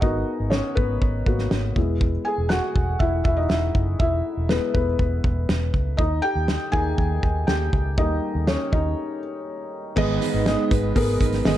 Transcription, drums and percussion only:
0.02 kick
0.52 snare
0.77 kick
1.02 kick
1.26 kick
1.39 snare
1.51 snare
1.76 kick
2.01 kick
2.50 snare
2.76 kick
3.00 kick
3.25 kick
3.50 snare
3.75 kick
4.00 kick
4.49 snare
4.75 kick
4.99 kick
5.24 kick
5.49 snare
5.74 kick
5.99 kick
6.48 snare
6.73 kick
6.98 kick
7.23 kick
7.48 snare
7.73 kick
7.98 kick
8.47 snare
8.73 kick
9.97 kick, crash
10.21 hi-hat pedal, open hi-hat
10.46 snare, hi-hat pedal, open hi-hat
10.71 kick, hi-hat pedal, open hi-hat
10.96 kick, hi-hat pedal, open hi-hat
11.20 kick, hi-hat pedal, open hi-hat
11.32 snare, open hi-hat
11.45 snare, hi-hat pedal, open hi-hat

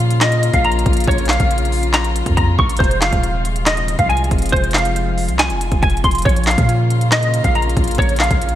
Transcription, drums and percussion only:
0.10 closed hi-hat
0.21 snare, clap, closed hi-hat
0.32 closed hi-hat
0.43 closed hi-hat
0.54 kick, closed hi-hat
0.64 closed hi-hat
0.72 closed hi-hat
0.79 closed hi-hat
0.86 kick, closed hi-hat
0.93 closed hi-hat
0.97 closed hi-hat
1.00 closed hi-hat
1.04 kick, closed hi-hat
1.11 closed hi-hat
1.18 closed hi-hat
1.25 snare, clap, closed hi-hat
1.33 closed hi-hat
1.40 kick, closed hi-hat
1.51 closed hi-hat
1.58 closed hi-hat
1.65 closed hi-hat
1.72 open hi-hat
1.83 closed hi-hat
1.94 snare, clap, closed hi-hat
2.04 closed hi-hat
2.16 closed hi-hat
2.26 kick, closed hi-hat
2.37 kick, closed hi-hat
2.59 kick
2.69 closed hi-hat
2.77 kick, closed hi-hat
2.84 closed hi-hat
2.91 closed hi-hat
3.02 snare, clap, closed hi-hat
3.13 kick, closed hi-hat
3.23 closed hi-hat
3.45 closed hi-hat
3.56 closed hi-hat
3.66 snare, clap, closed hi-hat
3.77 closed hi-hat
3.88 closed hi-hat
3.99 kick, closed hi-hat
4.10 closed hi-hat
4.17 closed hi-hat
4.24 closed hi-hat
4.31 kick, closed hi-hat
4.38 closed hi-hat
4.42 closed hi-hat
4.46 closed hi-hat
4.49 kick, closed hi-hat
4.56 closed hi-hat
4.64 closed hi-hat
4.71 snare, clap, closed hi-hat
4.78 closed hi-hat
4.85 closed hi-hat
4.96 closed hi-hat
5.18 open hi-hat
5.29 closed hi-hat
5.39 snare, clap, closed hi-hat
5.50 closed hi-hat
5.61 closed hi-hat
5.72 kick, closed hi-hat
5.83 kick, closed hi-hat
5.90 closed hi-hat
5.97 closed hi-hat
6.04 kick, closed hi-hat
6.11 closed hi-hat
6.15 closed hi-hat
6.18 closed hi-hat
6.22 kick, closed hi-hat
6.29 closed hi-hat
6.36 closed hi-hat
6.44 snare, clap, closed hi-hat
6.51 closed hi-hat
6.58 kick, closed hi-hat
6.69 closed hi-hat
6.90 closed hi-hat
7.01 closed hi-hat
7.12 snare, clap, closed hi-hat
7.23 closed hi-hat
7.34 closed hi-hat
7.44 kick, closed hi-hat
7.55 closed hi-hat
7.62 closed hi-hat
7.69 closed hi-hat
7.77 kick, closed hi-hat
7.84 closed hi-hat
7.88 closed hi-hat
7.91 closed hi-hat
7.95 kick, closed hi-hat
8.02 closed hi-hat
8.09 closed hi-hat
8.16 snare, clap, closed hi-hat
8.24 closed hi-hat
8.31 kick, closed hi-hat
8.41 closed hi-hat
8.49 closed hi-hat

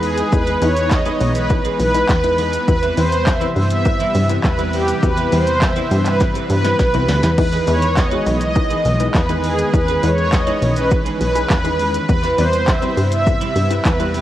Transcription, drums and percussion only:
0.03 open hi-hat, shaker
0.18 closed hi-hat, shaker
0.32 kick, shaker
0.47 closed hi-hat, shaker
0.62 open hi-hat, shaker
0.77 closed hi-hat, shaker
0.91 kick, snare, clap, shaker
1.06 closed hi-hat, shaker
1.21 open hi-hat, shaker
1.35 closed hi-hat, shaker
1.50 kick, shaker
1.65 closed hi-hat, shaker
1.80 open hi-hat, shaker
1.94 closed hi-hat, shaker
2.09 kick, snare, clap, shaker
2.24 closed hi-hat, shaker
2.38 open hi-hat, shaker
2.53 closed hi-hat, shaker
2.68 kick, shaker
2.83 closed hi-hat, shaker
2.97 open hi-hat, shaker
3.12 closed hi-hat, shaker
3.27 kick, snare, clap, shaker
3.41 closed hi-hat, shaker
3.56 open hi-hat, shaker
3.71 closed hi-hat, shaker
3.85 kick, shaker
4.00 closed hi-hat, shaker
4.15 open hi-hat, shaker
4.30 closed hi-hat, shaker
4.44 kick, snare, clap, shaker
4.59 closed hi-hat, shaker
4.73 open hi-hat, shaker
4.88 closed hi-hat, shaker
5.03 kick, shaker
5.18 closed hi-hat, shaker
5.32 open hi-hat, shaker
5.47 closed hi-hat, shaker
5.62 kick, snare, clap, shaker
5.76 closed hi-hat, shaker
5.91 open hi-hat, shaker
6.06 clap, closed hi-hat, shaker
6.20 kick, snare, shaker
6.35 closed hi-hat, shaker
6.50 open hi-hat, shaker
6.65 snare, closed hi-hat, shaker
6.79 kick, snare, shaker
6.94 closed hi-hat, shaker
7.09 snare, open hi-hat, shaker
7.23 snare, closed hi-hat, shaker
7.38 kick, crash
7.53 closed hi-hat, shaker
7.67 open hi-hat, shaker
7.82 closed hi-hat, shaker
7.97 kick, snare, clap, shaker
8.11 closed hi-hat, shaker
8.27 open hi-hat, shaker
8.41 closed hi-hat, shaker
8.56 kick, shaker
8.71 closed hi-hat, shaker
8.85 open hi-hat, shaker
9.00 closed hi-hat, shaker
9.15 kick, snare, clap, shaker
9.29 closed hi-hat, shaker
9.44 open hi-hat, shaker
9.59 closed hi-hat, shaker
9.74 kick, shaker
9.88 closed hi-hat, shaker
10.03 open hi-hat, shaker
10.18 closed hi-hat, shaker
10.32 kick, snare, clap, shaker
10.47 closed hi-hat, shaker
10.62 open hi-hat, shaker
10.76 closed hi-hat, shaker
10.91 kick, shaker
11.06 closed hi-hat, shaker
11.21 open hi-hat, shaker
11.35 closed hi-hat, shaker
11.50 kick, snare, clap, shaker
11.65 closed hi-hat, shaker
11.79 open hi-hat, shaker
11.94 closed hi-hat, shaker
12.09 kick, shaker
12.23 closed hi-hat, shaker
12.38 open hi-hat, shaker
12.53 closed hi-hat, shaker
12.68 kick, snare, clap, shaker
12.82 closed hi-hat, shaker
12.97 open hi-hat, shaker
13.12 closed hi-hat, shaker
13.26 kick, shaker
13.41 closed hi-hat, shaker
13.56 open hi-hat, shaker
13.71 closed hi-hat, shaker
13.85 kick, snare, clap, shaker
14.00 closed hi-hat, shaker
14.14 open hi-hat, shaker

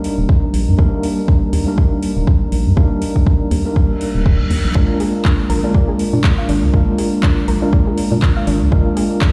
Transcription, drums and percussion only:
0.04 open hi-hat
0.29 kick
0.54 open hi-hat
0.79 kick
1.03 open hi-hat
1.28 kick
1.53 open hi-hat
1.78 kick
2.03 open hi-hat
2.27 kick
2.52 open hi-hat
2.77 kick
3.02 open hi-hat
3.16 kick
3.27 kick
3.51 open hi-hat
3.76 kick
4.01 open hi-hat
4.26 kick
4.50 open hi-hat
4.75 kick
5.00 open hi-hat
5.25 kick, clap
5.50 open hi-hat
5.74 kick
5.99 open hi-hat
6.24 kick, clap
6.49 open hi-hat
6.74 kick
6.98 open hi-hat
7.23 kick, clap
7.48 open hi-hat
7.73 kick
7.98 open hi-hat
8.22 kick, clap
8.47 open hi-hat
8.72 kick
8.97 open hi-hat
9.21 kick, clap

